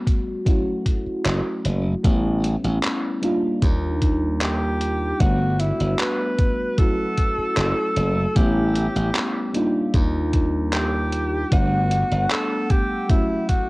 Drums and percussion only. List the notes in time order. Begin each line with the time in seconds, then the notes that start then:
0.07 kick, closed hi-hat
0.46 kick, closed hi-hat
0.86 kick, closed hi-hat
1.26 clap, closed hi-hat
1.65 closed hi-hat
2.04 kick, closed hi-hat
2.44 closed hi-hat
2.64 closed hi-hat
2.83 clap, closed hi-hat
3.23 closed hi-hat
3.62 kick, closed hi-hat
4.02 kick, closed hi-hat
4.41 clap, closed hi-hat
4.81 closed hi-hat
5.20 kick, closed hi-hat
5.60 closed hi-hat
5.80 closed hi-hat
5.99 clap, closed hi-hat
6.39 kick, closed hi-hat
6.78 kick, closed hi-hat
7.18 kick, closed hi-hat
7.57 clap, closed hi-hat
7.96 closed hi-hat
8.36 kick, closed hi-hat
8.75 closed hi-hat
8.96 closed hi-hat
9.15 clap, closed hi-hat
9.54 closed hi-hat
9.94 kick, closed hi-hat
10.33 kick, closed hi-hat
10.73 clap, closed hi-hat
11.12 closed hi-hat
11.52 kick, closed hi-hat
11.91 closed hi-hat
12.12 closed hi-hat
12.31 clap, closed hi-hat
12.70 kick, closed hi-hat
13.10 kick, closed hi-hat
13.49 kick, closed hi-hat